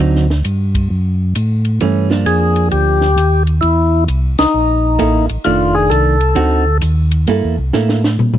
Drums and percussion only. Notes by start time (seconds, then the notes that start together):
0.16 snare
0.30 snare
0.45 hi-hat pedal, ride
0.75 kick, ride
1.35 hi-hat pedal, ride
1.65 ride
1.80 ride
2.11 snare
2.26 hi-hat pedal, ride
2.56 ride
2.71 ride
3.01 snare
3.18 hi-hat pedal, ride
3.47 ride
3.62 ride
4.08 hi-hat pedal, ride
4.38 snare, ride
4.99 hi-hat pedal, ride
5.29 ride
5.44 ride
5.91 hi-hat pedal, ride
6.20 ride
6.36 ride
6.81 hi-hat pedal, ride
7.11 ride
7.27 ride
7.73 snare, hi-hat pedal
7.89 snare
8.04 snare
8.19 floor tom
8.34 floor tom